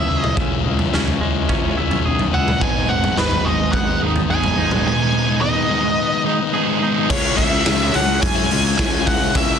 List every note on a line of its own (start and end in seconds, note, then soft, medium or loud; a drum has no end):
0.00 1.20 G#3 medium
0.00 0.65 C#4 medium
0.00 2.05 G#4 medium
0.00 0.19 E5 medium
0.08 0.35 C#2 medium
0.08 0.34 C#3 medium
0.08 0.24 G#3 medium
0.08 0.22 C#4 medium
0.08 0.20 E4 medium
0.19 0.36 C#4 medium
0.19 0.37 E4 medium
0.19 0.34 D#5 medium
0.24 0.36 G#3 medium
0.24 mid tom medium
0.35 0.63 C#2 medium
0.35 0.63 C#3 medium
0.35 0.66 G#3 medium
0.35 0.66 C#4 medium
0.35 0.66 E4 medium
0.35 kick loud
0.35 floor tom medium
0.65 0.91 C#2 medium
0.65 0.92 C#3 medium
0.65 0.82 G#3 medium
0.65 0.79 C#4 medium
0.65 0.78 E4 medium
0.79 0.94 G#3 medium
0.79 0.93 C#4 medium
0.79 0.94 E4 medium
0.79 floor tom medium
0.93 1.20 C#2 medium
0.93 1.19 C#3 medium
0.93 1.09 G#3 medium
0.93 1.07 C#4 medium
0.93 1.05 E4 medium
0.93 snare medium
1.06 1.21 G#3 medium
1.06 1.21 C#4 medium
1.06 1.22 E4 medium
1.06 floor tom medium
1.20 1.48 C#2 medium
1.20 1.75 C#3 medium
1.20 1.64 G#3 medium
1.20 1.62 C#4 medium
1.20 1.61 E4 medium
1.49 1.76 C#2 medium
1.49 2.62 C#4 medium
1.49 kick loud
1.49 floor tom medium
1.62 1.77 G#3 medium
1.62 1.77 C#4 medium
1.62 1.78 E4 medium
1.76 2.04 C#2 medium
1.76 2.03 C#3 medium
1.76 1.93 G#3 medium
1.76 1.91 C#4 medium
1.76 1.90 E4 medium
1.91 2.04 G#3 medium
1.91 2.05 C#4 medium
1.91 2.05 E4 medium
1.91 floor tom medium
2.04 2.32 B1 medium
2.04 2.30 C#3 medium
2.04 2.32 G#3 medium
2.04 2.33 C#4 loud
2.04 2.33 E4 medium
2.04 4.30 G#4 medium
2.19 floor tom medium
2.32 2.59 C#2 medium
2.32 2.59 C#3 medium
2.32 2.48 G#3 medium
2.32 2.46 C#4 medium
2.32 2.45 E4 medium
2.32 2.63 F#5 loud
2.46 2.61 G#3 medium
2.46 2.60 C#4 medium
2.46 2.59 E4 medium
2.46 mid tom medium
2.60 2.87 G#1 medium
2.60 3.16 G#2 medium
2.60 2.88 D#3 medium
2.60 2.90 G#3 medium
2.60 2.91 B3 loud
2.60 2.91 D#4 loud
2.60 2.91 G#5 loud
2.60 kick loud
2.60 floor tom medium
2.88 3.15 G#1 medium
2.88 3.17 D#3 medium
2.88 3.05 G#3 medium
2.88 3.04 B3 medium
2.88 3.02 D#4 medium
2.88 3.18 F#5 medium
3.02 3.18 G#3 medium
3.02 3.19 B3 medium
3.02 3.19 D#4 medium
3.02 floor tom medium
3.16 3.43 G#1 medium
3.16 4.30 G#2 medium
3.16 3.44 D#3 medium
3.16 3.33 G#3 medium
3.16 3.32 B3 medium
3.16 3.31 D#4 medium
3.16 3.47 B4 medium
3.16 snare medium
3.31 3.46 G#3 medium
3.31 3.47 B3 medium
3.31 3.48 D#4 medium
3.31 floor tom medium
3.45 3.71 G#1 medium
3.45 4.01 D#3 medium
3.45 3.89 G#3 medium
3.45 3.87 B3 medium
3.45 3.86 D#4 medium
3.45 3.72 D#5 medium
3.59 muted overdriven electric guitar stroke soft
3.72 4.00 G#1 medium
3.72 5.15 B3 medium
3.72 3.99 F#5 medium
3.72 kick loud
3.72 floor tom medium
3.87 4.02 G#3 medium
3.87 4.02 B3 medium
3.87 4.03 D#4 medium
4.01 4.28 G#1 medium
4.01 4.29 D#3 medium
4.01 4.18 G#3 medium
4.01 4.16 B3 medium
4.01 4.15 D#4 medium
4.15 4.31 G#3 medium
4.15 4.31 B3 medium
4.15 4.31 D#4 medium
4.15 muted overdriven electric guitar stroke medium
4.15 floor tom medium
4.29 4.56 G#1 medium
4.29 4.85 G#2 medium
4.29 4.56 D#3 medium
4.29 4.58 G#3 loud
4.29 4.58 B3 medium
4.29 4.59 D#4 loud
4.29 5.70 G#4 medium
4.29 4.86 G#5 loud
4.43 4.57 G#3 medium
4.43 4.58 B3 medium
4.43 4.58 D#4 medium
4.43 floor tom medium
4.57 4.84 G#1 medium
4.57 4.85 D#3 medium
4.57 4.73 G#3 medium
4.57 4.72 B3 medium
4.57 4.70 D#4 medium
4.71 4.86 G#3 medium
4.71 4.87 B3 medium
4.71 4.87 D#4 medium
4.71 mid tom medium
4.86 5.41 G#2 loud
4.86 5.12 D#3 medium
4.86 5.13 G#3 medium
4.86 5.14 B3 medium
4.86 5.15 D#4 loud
4.86 5.45 G#5 loud
5.13 5.41 D#3 medium
5.13 5.29 G#3 medium
5.13 5.28 B3 medium
5.13 5.26 D#4 medium
5.28 5.42 G#3 medium
5.28 5.43 B3 medium
5.28 5.44 D#4 medium
5.41 5.84 G#2 medium
5.41 5.69 D#3 medium
5.41 5.57 G#3 loud
5.41 5.56 B3 medium
5.41 5.54 D#4 medium
5.41 6.22 D#5 medium
5.55 5.70 G#3 medium
5.55 5.71 B3 medium
5.55 5.72 D#4 medium
5.70 6.25 D#3 medium
5.70 6.13 G#3 medium
5.70 6.11 B3 medium
5.70 6.10 D#4 medium
5.83 muted overdriven electric guitar stroke medium
5.98 7.11 B3 medium
6.11 6.26 G#3 medium
6.11 6.27 B3 medium
6.11 6.27 D#4 medium
6.26 6.53 D#3 medium
6.26 6.42 G#3 medium
6.26 6.40 B3 medium
6.26 6.39 D#4 medium
6.39 6.54 B3 medium
6.39 6.55 D#4 medium
6.39 muted overdriven electric guitar stroke medium
6.43 6.53 G#3 medium
6.54 7.09 G#2 medium
6.54 6.81 D#3 loud
6.54 6.82 G#3 medium
6.54 6.83 B3 loud
6.54 6.84 D#4 loud
6.54 7.10 G#4 medium
6.66 6.80 G#3 medium
6.66 6.81 B3 medium
6.66 6.82 D#4 medium
6.82 7.08 D#3 medium
6.82 6.98 G#3 medium
6.82 6.96 B3 medium
6.82 6.95 D#4 medium
6.96 7.09 G#3 medium
6.96 7.09 B3 medium
6.96 7.09 D#4 medium
7.09 7.34 C#2 loud
7.09 7.38 C#3 medium
7.09 7.39 G#3 medium
7.09 7.39 C#4 loud
7.09 9.59 E4 medium
7.09 7.40 E4 loud
7.09 9.59 G#4 medium
7.09 9.32 C#5 medium
7.09 7.37 C#5 loud
7.09 9.59 G#5 medium
7.09 kick loud
7.09 crash loud
7.37 7.62 C#2 medium
7.37 7.64 C#3 medium
7.37 7.54 G#3 medium
7.37 7.53 C#4 medium
7.37 7.52 E4 medium
7.37 7.96 E5 loud
7.37 kick medium
7.37 open hi-hat medium
7.52 7.66 G#3 medium
7.52 7.66 C#4 medium
7.52 7.67 E4 medium
7.65 7.90 C#2 medium
7.65 7.93 C#3 medium
7.65 7.82 G#3 medium
7.65 7.81 C#4 medium
7.65 7.79 E4 loud
7.65 snare loud
7.65 open hi-hat medium
7.80 7.94 G#3 medium
7.80 7.94 C#4 medium
7.80 7.94 E4 medium
7.94 8.18 C#2 medium
7.94 8.21 F#5 loud
7.94 muted distorted electric guitar stroke soft
7.94 open hi-hat medium
8.22 8.46 F#2 medium
8.22 8.77 G#5 loud
8.22 kick loud
8.22 open hi-hat medium
8.35 8.50 G#3 medium
8.35 8.50 C#4 medium
8.35 8.51 E4 medium
8.49 8.75 C#2 loud
8.49 8.77 C#3 medium
8.49 8.78 G#3 medium
8.49 8.78 C#4 medium
8.49 8.79 E4 medium
8.49 open hi-hat medium
8.78 9.26 C#2 medium
8.78 9.04 C#3 medium
8.78 8.94 G#3 loud
8.78 8.92 C#4 medium
8.78 8.90 E4 medium
8.78 9.07 G#5 loud
8.78 kick loud
8.78 snare loud
8.78 open hi-hat loud
8.92 9.06 G#3 medium
8.92 9.06 C#4 medium
8.92 9.07 E4 medium
9.05 9.32 C#3 medium
9.05 9.23 G#3 medium
9.05 9.20 C#4 medium
9.05 9.19 E4 medium
9.05 9.36 F#5 loud
9.05 kick medium
9.05 open hi-hat medium
9.20 9.34 G#3 medium
9.20 9.34 C#4 medium
9.20 9.35 E4 medium
9.33 9.58 C#2 medium
9.33 9.59 C#3 loud
9.33 9.59 G#3 medium
9.33 9.59 C#4 loud
9.33 9.59 E4 loud
9.33 9.59 D#5 medium
9.33 9.59 E5 loud
9.33 kick loud
9.33 open hi-hat loud